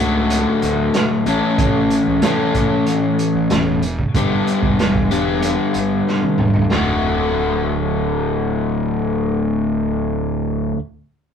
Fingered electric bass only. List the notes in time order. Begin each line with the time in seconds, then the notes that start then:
Already playing: C#2
0.63 D2
1.26 A1
1.58 A1
2.07 C#2
2.22 A2
3.35 A1
3.51 E1
4.14 G1
4.62 E1
4.79 E1
5.76 G1
6.39 E1
6.54 D1
6.69 D1